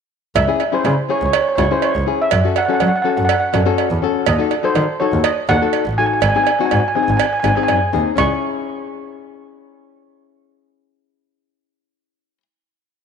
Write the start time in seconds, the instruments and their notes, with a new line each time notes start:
0.36 double bass C#2, steel pan E5, cowbell
0.47 nylon-string guitar C#4 E4 G#4
0.60 cowbell
0.72 nylon-string guitar C#4 E4 G#4, steel pan C5
0.85 double bass C#3, cowbell
1.09 nylon-string guitar C#4 E4 G#4, steel pan C#5
1.18 double bass C#2, steel pan C#5
1.26 steel pan C#5
1.33 steel pan C#5, cowbell
1.41 steel pan C#5
1.49 steel pan C#5
1.55 double bass C#2, nylon-string guitar C#4 E4 F#4, steel pan C#5, cowbell
1.70 nylon-string guitar C#4 E4 G#4, steel pan C5
1.82 steel pan C#5, cowbell
1.95 double bass C#2
2.06 nylon-string guitar C#4 E4 G#4
2.22 steel pan E5
2.31 double bass F#2, cowbell
2.44 nylon-string guitar C#4 F#4 A4
2.56 steel pan F#5, cowbell
2.65 nylon-string guitar C#4 F#4, steel pan F#5
2.70 nylon-string guitar A4, steel pan F#5
2.80 double bass F#3, steel pan F#5, cowbell
2.88 steel pan F#5
2.96 steel pan F#5
3.02 nylon-string guitar C#4 F#4 A4, steel pan F#5
3.10 steel pan F#5
3.17 double bass F#2, steel pan F#5
3.25 steel pan F#5
3.29 steel pan F#5, cowbell
3.40 steel pan F#5
3.53 double bass F#2, nylon-string guitar C#4 F#4 A4, cowbell
3.66 nylon-string guitar C#4 F#4 A4
3.78 cowbell
3.90 double bass E2
4.02 nylon-string guitar C#4 F#4 A4
4.26 double bass D#2, steel pan D#5, cowbell
4.38 nylon-string guitar D#4 F#4 A4
4.51 cowbell
4.63 nylon-string guitar D#4 F#4 A4, steel pan C5
4.75 double bass D#3, cowbell
5.00 nylon-string guitar D#4 F#4 A4, steel pan C#5
5.13 double bass D#2
5.24 steel pan D#5, cowbell
5.49 double bass D#2, nylon-string guitar D#4 F#4 A4, steel pan F#5, cowbell
5.61 nylon-string guitar D#4 F#4 A4
5.73 cowbell
5.86 double bass A1
5.98 nylon-string guitar D#4 F#4 A4, steel pan G#5
6.06 steel pan G#5
6.13 steel pan G#5
6.22 double bass G#1, steel pan G#5, cowbell
6.29 steel pan G#5
6.35 nylon-string guitar C4 D#4 G#4, steel pan G#5
6.44 steel pan G#5, cowbell
6.51 steel pan G#5
6.59 nylon-string guitar C4 D#4 F#4, steel pan G#5
6.66 steel pan G#5
6.71 double bass G#2, steel pan G#5, cowbell
6.80 steel pan G#5
6.88 steel pan G#5
6.95 nylon-string guitar C4 D#4 G#4, steel pan G#5
7.03 steel pan G#5
7.08 double bass G#1, steel pan G#5
7.17 steel pan G#5, cowbell
7.26 steel pan G#5
7.33 steel pan G#5
7.40 nylon-string guitar C4, steel pan G#5
7.44 double bass G#1, nylon-string guitar D#4 G#4, cowbell
7.48 steel pan G#5
7.56 nylon-string guitar C4 D#4 G#4, steel pan G#5
7.63 steel pan G#5
7.68 double bass F#2, steel pan G#5, cowbell
7.93 double bass D#2, nylon-string guitar C4 D#4 G#4
8.16 double bass C#2, nylon-string guitar C#4 E4, steel pan C#6, cowbell
8.20 nylon-string guitar G#4